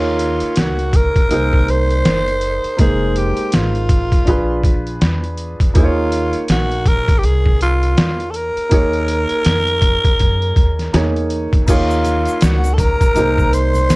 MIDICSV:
0, 0, Header, 1, 7, 480
1, 0, Start_track
1, 0, Tempo, 740741
1, 1808, Time_signature, 4, 2, 24, 8
1, 9045, End_track
2, 0, Start_track
2, 0, Title_t, "Flute"
2, 0, Program_c, 0, 73
2, 7579, Note_on_c, 0, 77, 75
2, 8055, Note_on_c, 0, 78, 72
2, 8065, Note_off_c, 0, 77, 0
2, 8253, Note_on_c, 0, 81, 67
2, 8263, Note_off_c, 0, 78, 0
2, 8295, Note_on_c, 0, 82, 78
2, 8305, Note_off_c, 0, 81, 0
2, 8775, Note_on_c, 0, 84, 95
2, 8785, Note_off_c, 0, 82, 0
2, 9045, Note_off_c, 0, 84, 0
2, 9045, End_track
3, 0, Start_track
3, 0, Title_t, "Alto saxophone"
3, 0, Program_c, 1, 65
3, 0, Note_on_c, 1, 65, 81
3, 381, Note_on_c, 1, 66, 81
3, 390, Note_off_c, 1, 65, 0
3, 622, Note_on_c, 1, 70, 102
3, 631, Note_off_c, 1, 66, 0
3, 1102, Note_on_c, 1, 72, 114
3, 1112, Note_off_c, 1, 70, 0
3, 1815, Note_off_c, 1, 72, 0
3, 1818, Note_on_c, 1, 68, 85
3, 2059, Note_on_c, 1, 67, 82
3, 2069, Note_off_c, 1, 68, 0
3, 2299, Note_on_c, 1, 65, 77
3, 2309, Note_off_c, 1, 67, 0
3, 3253, Note_off_c, 1, 65, 0
3, 3738, Note_on_c, 1, 65, 87
3, 4187, Note_off_c, 1, 65, 0
3, 4220, Note_on_c, 1, 66, 92
3, 4459, Note_on_c, 1, 70, 106
3, 4469, Note_off_c, 1, 66, 0
3, 4656, Note_on_c, 1, 67, 76
3, 4666, Note_off_c, 1, 70, 0
3, 4700, Note_on_c, 1, 68, 92
3, 4710, Note_off_c, 1, 67, 0
3, 4934, Note_off_c, 1, 68, 0
3, 4940, Note_on_c, 1, 65, 92
3, 5384, Note_on_c, 1, 69, 65
3, 5394, Note_off_c, 1, 65, 0
3, 5420, Note_on_c, 1, 70, 96
3, 5430, Note_off_c, 1, 69, 0
3, 7334, Note_off_c, 1, 70, 0
3, 7583, Note_on_c, 1, 65, 88
3, 8057, Note_on_c, 1, 66, 80
3, 8067, Note_off_c, 1, 65, 0
3, 8254, Note_on_c, 1, 69, 68
3, 8263, Note_off_c, 1, 66, 0
3, 8294, Note_on_c, 1, 70, 110
3, 8304, Note_off_c, 1, 69, 0
3, 8774, Note_on_c, 1, 72, 117
3, 8783, Note_off_c, 1, 70, 0
3, 9045, Note_off_c, 1, 72, 0
3, 9045, End_track
4, 0, Start_track
4, 0, Title_t, "Upright piano"
4, 0, Program_c, 2, 0
4, 0, Note_on_c, 2, 58, 56
4, 0, Note_on_c, 2, 63, 49
4, 0, Note_on_c, 2, 68, 53
4, 0, Note_on_c, 2, 73, 63
4, 823, Note_off_c, 2, 58, 0
4, 828, Note_off_c, 2, 63, 0
4, 832, Note_off_c, 2, 68, 0
4, 836, Note_on_c, 2, 58, 52
4, 845, Note_on_c, 2, 63, 47
4, 854, Note_on_c, 2, 68, 53
4, 859, Note_off_c, 2, 73, 0
4, 864, Note_on_c, 2, 72, 64
4, 1783, Note_off_c, 2, 58, 0
4, 1787, Note_off_c, 2, 63, 0
4, 1792, Note_off_c, 2, 68, 0
4, 1794, Note_on_c, 2, 58, 54
4, 1797, Note_off_c, 2, 72, 0
4, 1804, Note_on_c, 2, 63, 48
4, 1812, Note_on_c, 2, 56, 53
4, 1822, Note_on_c, 2, 72, 65
4, 2742, Note_off_c, 2, 58, 0
4, 2747, Note_off_c, 2, 63, 0
4, 2751, Note_off_c, 2, 56, 0
4, 2754, Note_on_c, 2, 62, 61
4, 2756, Note_off_c, 2, 72, 0
4, 2763, Note_on_c, 2, 65, 55
4, 2773, Note_on_c, 2, 68, 56
4, 2781, Note_on_c, 2, 71, 62
4, 3702, Note_off_c, 2, 62, 0
4, 3706, Note_off_c, 2, 65, 0
4, 3711, Note_off_c, 2, 68, 0
4, 3716, Note_off_c, 2, 71, 0
4, 3717, Note_on_c, 2, 58, 61
4, 3724, Note_on_c, 2, 63, 54
4, 3734, Note_on_c, 2, 68, 55
4, 3743, Note_on_c, 2, 72, 53
4, 3785, Note_off_c, 2, 72, 0
4, 3785, Note_on_c, 2, 73, 66
4, 5616, Note_off_c, 2, 58, 0
4, 5620, Note_off_c, 2, 63, 0
4, 5625, Note_off_c, 2, 68, 0
4, 5634, Note_on_c, 2, 58, 58
4, 5641, Note_on_c, 2, 63, 52
4, 5651, Note_off_c, 2, 73, 0
4, 5652, Note_on_c, 2, 68, 53
4, 5661, Note_on_c, 2, 73, 61
4, 7055, Note_off_c, 2, 58, 0
4, 7059, Note_off_c, 2, 63, 0
4, 7064, Note_off_c, 2, 68, 0
4, 7069, Note_off_c, 2, 73, 0
4, 7081, Note_on_c, 2, 58, 54
4, 7085, Note_on_c, 2, 63, 53
4, 7091, Note_on_c, 2, 68, 50
4, 7095, Note_on_c, 2, 73, 58
4, 7547, Note_off_c, 2, 58, 0
4, 7556, Note_off_c, 2, 63, 0
4, 7557, Note_on_c, 2, 58, 59
4, 7565, Note_off_c, 2, 68, 0
4, 7566, Note_on_c, 2, 63, 53
4, 7572, Note_off_c, 2, 73, 0
4, 7575, Note_on_c, 2, 68, 52
4, 7582, Note_on_c, 2, 73, 66
4, 8503, Note_off_c, 2, 58, 0
4, 8508, Note_off_c, 2, 63, 0
4, 8512, Note_off_c, 2, 68, 0
4, 8516, Note_off_c, 2, 73, 0
4, 8516, Note_on_c, 2, 58, 60
4, 8524, Note_on_c, 2, 63, 51
4, 8534, Note_on_c, 2, 68, 49
4, 8542, Note_on_c, 2, 72, 63
4, 9045, Note_off_c, 2, 58, 0
4, 9045, Note_off_c, 2, 63, 0
4, 9045, Note_off_c, 2, 68, 0
4, 9045, Note_off_c, 2, 72, 0
4, 9045, End_track
5, 0, Start_track
5, 0, Title_t, "Upright bass"
5, 0, Program_c, 3, 32
5, 0, Note_on_c, 3, 39, 89
5, 253, Note_off_c, 3, 39, 0
5, 371, Note_on_c, 3, 37, 92
5, 733, Note_off_c, 3, 37, 0
5, 847, Note_on_c, 3, 36, 101
5, 1304, Note_off_c, 3, 36, 0
5, 1809, Note_on_c, 3, 29, 95
5, 2172, Note_off_c, 3, 29, 0
5, 2288, Note_on_c, 3, 32, 89
5, 2651, Note_off_c, 3, 32, 0
5, 2774, Note_on_c, 3, 34, 96
5, 3227, Note_off_c, 3, 34, 0
5, 3251, Note_on_c, 3, 40, 79
5, 3613, Note_off_c, 3, 40, 0
5, 3729, Note_on_c, 3, 39, 104
5, 4092, Note_off_c, 3, 39, 0
5, 4207, Note_on_c, 3, 34, 91
5, 4663, Note_off_c, 3, 34, 0
5, 4687, Note_on_c, 3, 36, 90
5, 5144, Note_off_c, 3, 36, 0
5, 5650, Note_on_c, 3, 39, 93
5, 6012, Note_off_c, 3, 39, 0
5, 6128, Note_on_c, 3, 41, 85
5, 6492, Note_off_c, 3, 41, 0
5, 6614, Note_on_c, 3, 42, 89
5, 6839, Note_off_c, 3, 42, 0
5, 6846, Note_on_c, 3, 39, 85
5, 7075, Note_off_c, 3, 39, 0
5, 7090, Note_on_c, 3, 40, 78
5, 7453, Note_off_c, 3, 40, 0
5, 7571, Note_on_c, 3, 39, 94
5, 7933, Note_off_c, 3, 39, 0
5, 8054, Note_on_c, 3, 37, 100
5, 8414, Note_off_c, 3, 37, 0
5, 8531, Note_on_c, 3, 36, 95
5, 8985, Note_off_c, 3, 36, 0
5, 9010, Note_on_c, 3, 30, 76
5, 9045, Note_off_c, 3, 30, 0
5, 9045, End_track
6, 0, Start_track
6, 0, Title_t, "Muted upright bass strokes"
6, 273, Note_on_c, 9, 29, 36
6, 337, Note_off_c, 9, 29, 0
6, 752, Note_on_c, 9, 29, 41
6, 817, Note_off_c, 9, 29, 0
6, 1713, Note_on_c, 9, 29, 43
6, 1777, Note_off_c, 9, 29, 0
6, 2671, Note_on_c, 9, 29, 39
6, 2735, Note_off_c, 9, 29, 0
6, 3631, Note_on_c, 9, 29, 42
6, 3696, Note_off_c, 9, 29, 0
6, 4111, Note_on_c, 9, 29, 37
6, 4175, Note_off_c, 9, 29, 0
6, 5552, Note_on_c, 9, 29, 39
6, 5617, Note_off_c, 9, 29, 0
6, 6033, Note_on_c, 9, 29, 39
6, 6098, Note_off_c, 9, 29, 0
6, 6512, Note_on_c, 9, 29, 39
6, 6577, Note_off_c, 9, 29, 0
6, 7471, Note_on_c, 9, 29, 41
6, 7536, Note_off_c, 9, 29, 0
6, 7954, Note_on_c, 9, 29, 41
6, 8018, Note_off_c, 9, 29, 0
6, 9045, End_track
7, 0, Start_track
7, 0, Title_t, "Drums"
7, 125, Note_on_c, 9, 42, 78
7, 190, Note_off_c, 9, 42, 0
7, 261, Note_on_c, 9, 42, 52
7, 326, Note_off_c, 9, 42, 0
7, 361, Note_on_c, 9, 42, 93
7, 370, Note_on_c, 9, 38, 94
7, 425, Note_off_c, 9, 42, 0
7, 435, Note_off_c, 9, 38, 0
7, 511, Note_on_c, 9, 42, 34
7, 576, Note_off_c, 9, 42, 0
7, 603, Note_on_c, 9, 36, 89
7, 605, Note_on_c, 9, 42, 82
7, 668, Note_off_c, 9, 36, 0
7, 670, Note_off_c, 9, 42, 0
7, 750, Note_on_c, 9, 36, 92
7, 752, Note_on_c, 9, 42, 55
7, 815, Note_off_c, 9, 36, 0
7, 817, Note_off_c, 9, 42, 0
7, 846, Note_on_c, 9, 42, 75
7, 911, Note_off_c, 9, 42, 0
7, 992, Note_on_c, 9, 36, 67
7, 1057, Note_off_c, 9, 36, 0
7, 1091, Note_on_c, 9, 42, 62
7, 1156, Note_off_c, 9, 42, 0
7, 1234, Note_on_c, 9, 42, 39
7, 1299, Note_off_c, 9, 42, 0
7, 1329, Note_on_c, 9, 42, 84
7, 1331, Note_on_c, 9, 38, 95
7, 1394, Note_off_c, 9, 42, 0
7, 1396, Note_off_c, 9, 38, 0
7, 1475, Note_on_c, 9, 42, 33
7, 1540, Note_off_c, 9, 42, 0
7, 1563, Note_on_c, 9, 42, 67
7, 1627, Note_off_c, 9, 42, 0
7, 1712, Note_on_c, 9, 42, 47
7, 1777, Note_off_c, 9, 42, 0
7, 1805, Note_on_c, 9, 42, 83
7, 1808, Note_on_c, 9, 36, 106
7, 1870, Note_off_c, 9, 42, 0
7, 1873, Note_off_c, 9, 36, 0
7, 2046, Note_on_c, 9, 42, 75
7, 2111, Note_off_c, 9, 42, 0
7, 2181, Note_on_c, 9, 42, 49
7, 2246, Note_off_c, 9, 42, 0
7, 2282, Note_on_c, 9, 42, 93
7, 2292, Note_on_c, 9, 38, 104
7, 2346, Note_off_c, 9, 42, 0
7, 2356, Note_off_c, 9, 38, 0
7, 2430, Note_on_c, 9, 42, 31
7, 2495, Note_off_c, 9, 42, 0
7, 2522, Note_on_c, 9, 36, 97
7, 2523, Note_on_c, 9, 42, 79
7, 2587, Note_off_c, 9, 36, 0
7, 2588, Note_off_c, 9, 42, 0
7, 2669, Note_on_c, 9, 36, 87
7, 2672, Note_on_c, 9, 42, 50
7, 2734, Note_off_c, 9, 36, 0
7, 2737, Note_off_c, 9, 42, 0
7, 2767, Note_on_c, 9, 42, 79
7, 2771, Note_on_c, 9, 36, 81
7, 2832, Note_off_c, 9, 42, 0
7, 2836, Note_off_c, 9, 36, 0
7, 3003, Note_on_c, 9, 36, 85
7, 3010, Note_on_c, 9, 42, 59
7, 3068, Note_off_c, 9, 36, 0
7, 3075, Note_off_c, 9, 42, 0
7, 3154, Note_on_c, 9, 42, 38
7, 3219, Note_off_c, 9, 42, 0
7, 3248, Note_on_c, 9, 42, 74
7, 3251, Note_on_c, 9, 38, 98
7, 3313, Note_off_c, 9, 42, 0
7, 3316, Note_off_c, 9, 38, 0
7, 3393, Note_on_c, 9, 42, 31
7, 3458, Note_off_c, 9, 42, 0
7, 3483, Note_on_c, 9, 42, 63
7, 3548, Note_off_c, 9, 42, 0
7, 3629, Note_on_c, 9, 36, 88
7, 3633, Note_on_c, 9, 42, 51
7, 3694, Note_off_c, 9, 36, 0
7, 3698, Note_off_c, 9, 42, 0
7, 3726, Note_on_c, 9, 42, 90
7, 3728, Note_on_c, 9, 36, 106
7, 3790, Note_off_c, 9, 42, 0
7, 3793, Note_off_c, 9, 36, 0
7, 3965, Note_on_c, 9, 42, 73
7, 4030, Note_off_c, 9, 42, 0
7, 4101, Note_on_c, 9, 42, 51
7, 4166, Note_off_c, 9, 42, 0
7, 4201, Note_on_c, 9, 42, 92
7, 4211, Note_on_c, 9, 38, 104
7, 4266, Note_off_c, 9, 42, 0
7, 4276, Note_off_c, 9, 38, 0
7, 4351, Note_on_c, 9, 42, 32
7, 4416, Note_off_c, 9, 42, 0
7, 4443, Note_on_c, 9, 36, 92
7, 4446, Note_on_c, 9, 42, 81
7, 4507, Note_off_c, 9, 36, 0
7, 4510, Note_off_c, 9, 42, 0
7, 4590, Note_on_c, 9, 36, 96
7, 4593, Note_on_c, 9, 42, 50
7, 4655, Note_off_c, 9, 36, 0
7, 4658, Note_off_c, 9, 42, 0
7, 4688, Note_on_c, 9, 42, 74
7, 4752, Note_off_c, 9, 42, 0
7, 4832, Note_on_c, 9, 36, 65
7, 4896, Note_off_c, 9, 36, 0
7, 4930, Note_on_c, 9, 42, 64
7, 4995, Note_off_c, 9, 42, 0
7, 5073, Note_on_c, 9, 42, 39
7, 5137, Note_off_c, 9, 42, 0
7, 5167, Note_on_c, 9, 42, 78
7, 5170, Note_on_c, 9, 38, 108
7, 5232, Note_off_c, 9, 42, 0
7, 5235, Note_off_c, 9, 38, 0
7, 5313, Note_on_c, 9, 42, 36
7, 5378, Note_off_c, 9, 42, 0
7, 5404, Note_on_c, 9, 42, 71
7, 5469, Note_off_c, 9, 42, 0
7, 5554, Note_on_c, 9, 42, 48
7, 5619, Note_off_c, 9, 42, 0
7, 5644, Note_on_c, 9, 42, 94
7, 5648, Note_on_c, 9, 36, 107
7, 5709, Note_off_c, 9, 42, 0
7, 5713, Note_off_c, 9, 36, 0
7, 5789, Note_on_c, 9, 42, 33
7, 5854, Note_off_c, 9, 42, 0
7, 5885, Note_on_c, 9, 42, 74
7, 5950, Note_off_c, 9, 42, 0
7, 6021, Note_on_c, 9, 42, 48
7, 6086, Note_off_c, 9, 42, 0
7, 6121, Note_on_c, 9, 42, 96
7, 6130, Note_on_c, 9, 38, 102
7, 6185, Note_off_c, 9, 42, 0
7, 6195, Note_off_c, 9, 38, 0
7, 6269, Note_on_c, 9, 42, 34
7, 6334, Note_off_c, 9, 42, 0
7, 6362, Note_on_c, 9, 36, 89
7, 6362, Note_on_c, 9, 42, 81
7, 6427, Note_off_c, 9, 36, 0
7, 6427, Note_off_c, 9, 42, 0
7, 6509, Note_on_c, 9, 36, 89
7, 6511, Note_on_c, 9, 42, 50
7, 6574, Note_off_c, 9, 36, 0
7, 6576, Note_off_c, 9, 42, 0
7, 6606, Note_on_c, 9, 42, 76
7, 6612, Note_on_c, 9, 36, 73
7, 6671, Note_off_c, 9, 42, 0
7, 6676, Note_off_c, 9, 36, 0
7, 6752, Note_on_c, 9, 42, 27
7, 6817, Note_off_c, 9, 42, 0
7, 6844, Note_on_c, 9, 36, 81
7, 6849, Note_on_c, 9, 42, 59
7, 6909, Note_off_c, 9, 36, 0
7, 6913, Note_off_c, 9, 42, 0
7, 6993, Note_on_c, 9, 38, 30
7, 6994, Note_on_c, 9, 42, 41
7, 7057, Note_off_c, 9, 38, 0
7, 7059, Note_off_c, 9, 42, 0
7, 7088, Note_on_c, 9, 42, 86
7, 7090, Note_on_c, 9, 38, 97
7, 7153, Note_off_c, 9, 42, 0
7, 7155, Note_off_c, 9, 38, 0
7, 7234, Note_on_c, 9, 42, 33
7, 7299, Note_off_c, 9, 42, 0
7, 7323, Note_on_c, 9, 42, 68
7, 7388, Note_off_c, 9, 42, 0
7, 7470, Note_on_c, 9, 36, 90
7, 7475, Note_on_c, 9, 42, 49
7, 7535, Note_off_c, 9, 36, 0
7, 7539, Note_off_c, 9, 42, 0
7, 7566, Note_on_c, 9, 42, 90
7, 7568, Note_on_c, 9, 49, 91
7, 7569, Note_on_c, 9, 36, 104
7, 7570, Note_on_c, 9, 82, 58
7, 7631, Note_off_c, 9, 42, 0
7, 7633, Note_off_c, 9, 49, 0
7, 7634, Note_off_c, 9, 36, 0
7, 7635, Note_off_c, 9, 82, 0
7, 7714, Note_on_c, 9, 82, 39
7, 7778, Note_off_c, 9, 82, 0
7, 7805, Note_on_c, 9, 42, 71
7, 7809, Note_on_c, 9, 63, 34
7, 7809, Note_on_c, 9, 82, 36
7, 7870, Note_off_c, 9, 42, 0
7, 7874, Note_off_c, 9, 63, 0
7, 7874, Note_off_c, 9, 82, 0
7, 7941, Note_on_c, 9, 42, 54
7, 7954, Note_on_c, 9, 82, 43
7, 8006, Note_off_c, 9, 42, 0
7, 8019, Note_off_c, 9, 82, 0
7, 8040, Note_on_c, 9, 42, 89
7, 8050, Note_on_c, 9, 38, 116
7, 8050, Note_on_c, 9, 82, 55
7, 8105, Note_off_c, 9, 42, 0
7, 8115, Note_off_c, 9, 38, 0
7, 8115, Note_off_c, 9, 82, 0
7, 8189, Note_on_c, 9, 42, 31
7, 8194, Note_on_c, 9, 82, 47
7, 8254, Note_off_c, 9, 42, 0
7, 8258, Note_off_c, 9, 82, 0
7, 8282, Note_on_c, 9, 36, 101
7, 8284, Note_on_c, 9, 42, 87
7, 8290, Note_on_c, 9, 64, 59
7, 8290, Note_on_c, 9, 82, 44
7, 8347, Note_off_c, 9, 36, 0
7, 8349, Note_off_c, 9, 42, 0
7, 8355, Note_off_c, 9, 64, 0
7, 8355, Note_off_c, 9, 82, 0
7, 8429, Note_on_c, 9, 36, 84
7, 8430, Note_on_c, 9, 42, 55
7, 8432, Note_on_c, 9, 82, 44
7, 8494, Note_off_c, 9, 36, 0
7, 8495, Note_off_c, 9, 42, 0
7, 8497, Note_off_c, 9, 82, 0
7, 8525, Note_on_c, 9, 42, 80
7, 8528, Note_on_c, 9, 63, 42
7, 8528, Note_on_c, 9, 64, 61
7, 8528, Note_on_c, 9, 82, 62
7, 8590, Note_off_c, 9, 42, 0
7, 8593, Note_off_c, 9, 63, 0
7, 8593, Note_off_c, 9, 64, 0
7, 8593, Note_off_c, 9, 82, 0
7, 8671, Note_on_c, 9, 36, 72
7, 8674, Note_on_c, 9, 82, 39
7, 8736, Note_off_c, 9, 36, 0
7, 8739, Note_off_c, 9, 82, 0
7, 8768, Note_on_c, 9, 42, 67
7, 8772, Note_on_c, 9, 82, 43
7, 8833, Note_off_c, 9, 42, 0
7, 8837, Note_off_c, 9, 82, 0
7, 8905, Note_on_c, 9, 63, 51
7, 8905, Note_on_c, 9, 82, 42
7, 8912, Note_on_c, 9, 42, 41
7, 8970, Note_off_c, 9, 63, 0
7, 8970, Note_off_c, 9, 82, 0
7, 8977, Note_off_c, 9, 42, 0
7, 9006, Note_on_c, 9, 42, 90
7, 9006, Note_on_c, 9, 82, 65
7, 9009, Note_on_c, 9, 38, 96
7, 9045, Note_off_c, 9, 38, 0
7, 9045, Note_off_c, 9, 42, 0
7, 9045, Note_off_c, 9, 82, 0
7, 9045, End_track
0, 0, End_of_file